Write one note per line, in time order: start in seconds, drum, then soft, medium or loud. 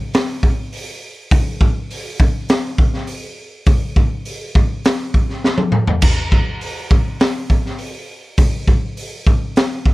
0.14 snare loud
0.14 open hi-hat medium
0.43 kick medium
0.73 open hi-hat medium
1.31 kick loud
1.31 open hi-hat medium
1.61 kick medium
1.91 open hi-hat medium
2.20 kick loud
2.49 snare loud
2.49 open hi-hat medium
2.78 kick loud
2.94 snare soft
3.07 open hi-hat medium
3.66 kick loud
3.66 open hi-hat medium
3.96 kick medium
4.25 open hi-hat medium
4.55 kick medium
4.85 snare loud
4.85 open hi-hat medium
5.14 kick medium
5.29 snare soft
5.44 snare medium
5.58 high tom medium
5.72 mid tom loud
5.87 floor tom loud
6.02 kick loud
6.02 crash loud
6.32 kick medium
6.61 open hi-hat medium
6.91 kick loud
7.20 snare loud
7.20 open hi-hat medium
7.50 kick medium
7.66 snare soft
7.79 open hi-hat medium
8.38 kick loud
8.38 open hi-hat medium
8.68 kick medium
8.97 open hi-hat medium
9.27 kick medium
9.56 snare loud
9.56 open hi-hat medium
9.85 kick medium